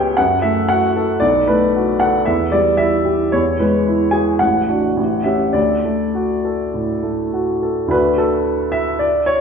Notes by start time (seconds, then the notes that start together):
Already playing: C#2 B3 G4 B4 C#5 E5 G5
0.17 F#2 F#5
0.42 A3 E5
0.69 F#4 F#5
0.96 A4
1.20 B1 D5
1.47 A3 B4
1.76 F#4
2.00 A4 F#5
2.25 E2 E5
2.52 G3 D5
2.77 E4 E5
3.05 G4
3.32 E2 C#5
3.59 G#3 B4
3.87 E4
4.11 G#4 G#5
4.39 A1 F#5
4.69 D4 F#4
4.97 A1
5.24 C#4 G4 E5
5.53 D2 D5
5.84 A3
6.15 F#4
6.45 A4
6.74 A2
7.03 A3
7.33 F#4
7.63 A4
7.88 D2 A3 D4 F#4 B4
8.18 A4
8.72 E5
8.99 D5
9.26 C#5